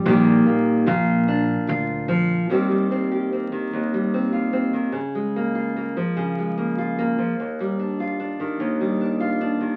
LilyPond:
<<
  \new Staff \with { instrumentName = "Felt piano" } { \time 3/4 \key ees \major \tempo 4 = 74 <c'' g''>2 r4 | r2. | r2. | r2. | }
  \new Staff \with { instrumentName = "Nylon-string guitar" } { \time 3/4 \key ees \major << { <ees g bes g'>8 bes8 f'8 d'8 f'4 | <ees g c' g'>16 g16 c'16 g'16 c'8. g16 c'16 f'16 c'8 | r16 aes16 bes16 f'16 bes8. aes16 bes16 f'16 bes8~ | bes16 g16 d'16 f'16 d'8. g16 d'16 f'16 d'8 | } \\ { bes,4 bes,4. f8 | ees,4~ ees,16 ees16 ees,4~ ees,16 ees16 | des4~ des16 f16 des4~ des16 f16 | ees,4~ ees,16 ees16 ees,4~ ees,16 ees16 | } >> }
  \new Staff \with { instrumentName = "Upright bass" } { \clef bass \time 3/4 \key ees \major bes,,8 r8 bes,,4 d,4 | r2. | r2. | r2. | }
>>